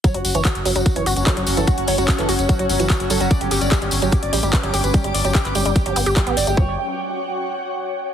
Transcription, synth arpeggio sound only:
X:1
M:4/4
L:1/16
Q:1/4=147
K:Glyd
V:1 name="Synth arpeggio sound" clef=bass
F, F, z E, F z F, F, z E, F z F, F, z E, | F z F, F, z E, F z F, F, z E, F z F, F, | z F, G z G, G, z F, G z G, G, z F, G z | G, G, z F, G z G, G, z F, B, G G, B, z A, |
F,2 z12 z2 |]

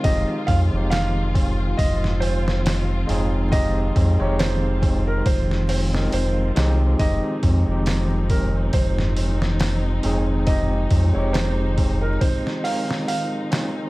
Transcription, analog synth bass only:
X:1
M:4/4
L:1/16
Q:"Swing 16ths" 1/4=69
K:Fm
V:1 name="Analog synth bass" clef=bass
F,,, z F,, F,,,4- F,,, F,,,6 F,,,2- | F,,,2 F,, F,,,4- F,,, F,,,4 F,,,2 C,,2 | F,,, z F,, F,,,4- F,,, F,,,6 F,,,2- | F,,,2 F,, F,,,4- F,,, z8 |]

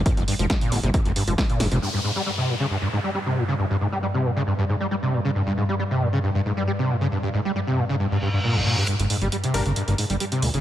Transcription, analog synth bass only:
X:1
M:4/4
L:1/16
Q:1/4=136
K:none
V:1 name="Analog synth bass" clef=bass
z F,,, z F,,, z2 G,,, G,,, z F,,, z F,,, z2 F,,, F,,, | z16 | z16 | z16 |
z16 | z G,,, z G,,, z2 G,,, G,,, z G,,, z G,,, z2 D,, G,,, |]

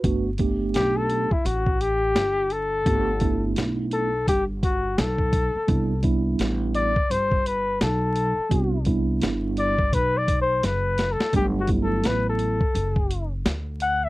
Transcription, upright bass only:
X:1
M:4/4
L:1/16
Q:"Swing 16ths" 1/4=85
K:G
V:1 name="Upright bass" clef=bass
G,,,4 B,,,3 z A,,,4 G,,,4 | G,,,4 B,,,4 G,,,4 B,,,3 z | C,,4 A,,,3 z G,,,4 B,,,3 z | C,,4 G,,,4 B,,,4 F,,,3 z |
G,,,4 A,,,3 z F,,,4 D,,4 |]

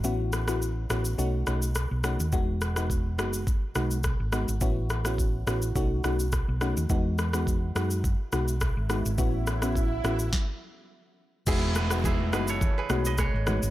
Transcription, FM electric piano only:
X:1
M:4/4
L:1/16
Q:"Swing 16ths" 1/4=105
K:E
V:1 name="FM electric piano"
[B,CEF]3 [B,CEF]3 [B,CEF]2 [A,CDF]2 [A,CDF]2 z2 [A,CDF]2 | [G,B,DF]3 [G,B,DF]3 [G,B,DF]2 z2 [G,B,DF]2 z2 [G,B,DF]2 | [B,CEF]3 [B,CEF]3 [B,CEF]2 [A,CDF]2 [A,CDF]2 z2 [A,CDF]2 | [G,B,DF]3 [G,B,DF]3 [G,B,DF]2 z2 [G,B,DF]2 z2 [G,B,DF]2 |
[B,CEF]3 [B,CEF]3 [B,CEF]2 z8 | [G,B,DF]3 [G,B,DF]3 [G,B,DF]2 z2 [G,B,DF]2 z2 [G,B,DF]2 |]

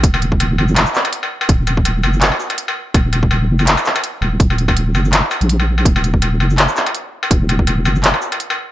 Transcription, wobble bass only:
X:1
M:4/4
L:1/16
Q:"Swing 16ths" 1/4=165
K:Ebm
V:1 name="Wobble bass" clef=bass
E,,,6 G,,,3 z6 z | E,,,6 G,,,3 z6 z | E,,,6 G,,,3 z4 z E,,,2 | E,,,6 G,,,3 z2 B,,,4- B,,, |
E,,,6 G,,,3 z6 z | E,,,6 G,,,3 z6 z |]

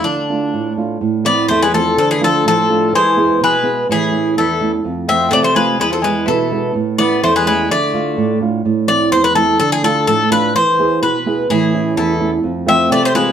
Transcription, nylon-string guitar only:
X:1
M:2/4
L:1/8
Q:1/4=126
K:none
V:1 name="Nylon-string guitar"
D, [A,DF] A,, [A,DF] | A,, [A,CE] E,, [A,CE] | D, [A,DF] A,, [A,DF] | E, [B,E^G] B,, [B,EG] |
A,, [A,^CE] E,, [A,CE] | F,, [A,CF] C, [A,CF] | E,, [^G,B,E] B,, [G,B,E] | A,, [A,^CE] E,, [A,CE] |
D, [A,DF] A,, [A,DF] | A,, [A,CE] E,, [A,CE] | D, [A,DF] A,, [A,DF] | E, [B,E^G] B,, [B,EG] |
A,, [A,^CE] E,, [A,CE] | F,, [A,CF] C, [A,CF] |]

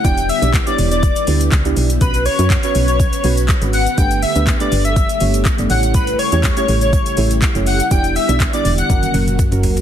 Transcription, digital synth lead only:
X:1
M:4/4
L:1/16
Q:1/4=122
K:Bm
V:1 name="Digital synth lead"
g2 e2 z d z d3 z6 | B2 c2 z c z c3 z4 f z | g2 e2 z d z e3 z4 f z | B2 c2 z c z c3 z4 f z |
g2 e2 z d z f3 z6 |]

